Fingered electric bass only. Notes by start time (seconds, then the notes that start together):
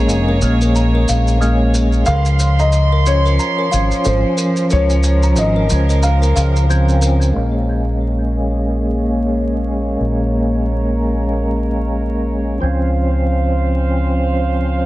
0.10 F1
0.42 A#1
1.09 A#1
2.07 C#2
3.73 G#1
4.06 G#1
4.72 C#2
5.38 G#1
5.71 C#2
6.36 C#2
7.36 A#1
10.00 A#1
12.62 C#2